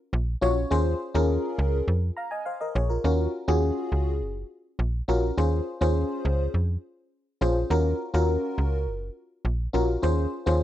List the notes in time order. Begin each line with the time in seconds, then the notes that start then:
0.13 A#1
0.41 A#1 C#4 F4 F#4 C#5
0.70 D#2 C#4 F4 G#4 C5
1.14 D#2 C#4 F4 G#4 A#4
1.58 C#2
1.88 F2
2.16 F5 A#5
2.31 D#5 G#5
2.46 C5 F5
2.61 A#4 D#5
2.75 A#1 G#4 C#5
2.90 F4 A#4
3.04 D#2 C#4 F4 F#4 A#4
3.48 D#2 C#4 F4 F#4 G#4
3.92 C#2
4.21 F#1
4.79 A#1
5.08 A#1 C#4 F4 F#4 A#4
5.37 D#2 C#4 F4 G#4 C5
5.81 D#2 C#4 F4 G#4 C5
6.25 C#2
6.54 F2
7.41 A#1 C#4 F4 G#4 C5
7.70 D#2 C#4 F4 F#4 A#4
8.14 D#2 C#4 F4 F#4 A#4
8.58 C#2
8.87 F#1
9.45 A#1
9.73 A#1 C#4 F4 F#4 A#4
10.02 D#2 C#4 F4 G#4 C5
10.46 D#2 C#4 F4 G#4 C5